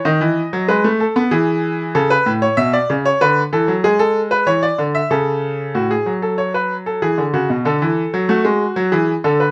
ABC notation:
X:1
M:3/4
L:1/16
Q:1/4=95
K:A
V:1 name="Grand piano"
^d4 B2 A2 G4 | A B2 c e d2 c B2 A2 | G A2 B c d2 e A4 | F G2 A c B2 A G2 F2 |
A4 F4 G2 A B |]
V:2 name="Grand piano" clef=bass
^D, E,2 F, G, A,2 B, E,4 | C,2 A,,2 B,,2 C,2 D,2 E, F, | G,4 E,2 D,2 C,4 | A,,2 F,6 E, D, C, B,, |
D, E,2 F, A, G,2 F, E,2 D,2 |]